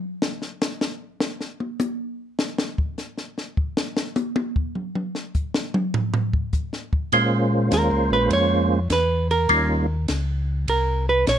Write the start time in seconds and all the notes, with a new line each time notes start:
0.22 snare
0.42 snare
0.61 snare, hi-hat pedal
0.81 snare
1.20 snare
1.41 snare
1.60 high tom
1.79 hi-hat pedal, high tom
2.39 snare
2.58 snare
2.78 kick
2.98 snare, hi-hat pedal
3.18 snare
3.38 snare
3.57 kick
3.77 snare
3.97 snare
4.16 hi-hat pedal, high tom
4.36 high tom
4.56 kick
4.75 mid tom
4.95 mid tom
5.15 snare
5.35 kick, hi-hat pedal
5.54 snare
5.74 mid tom
5.94 floor tom
6.14 floor tom
6.33 kick
6.53 kick, hi-hat pedal
6.73 snare
6.93 kick
7.12 A#2 G#3 A#3 C#4 F4 C5, kick, ride
7.71 D#2 A#4, kick, snare, hi-hat pedal, ride
7.91 C#2
8.11 A#1 B4
8.30 F2 C#5, kick, ride
8.90 E2 B4, kick, snare, hi-hat pedal, ride
9.31 A#4, ride
9.49 D#2 G3 A#3 C#4 D#4 F4, kick, ride
10.08 C#2, kick, snare, hi-hat pedal, ride
10.68 C2 A#4, kick, ride
11.09 B4
11.27 A#1 C#5, kick, snare, hi-hat pedal, ride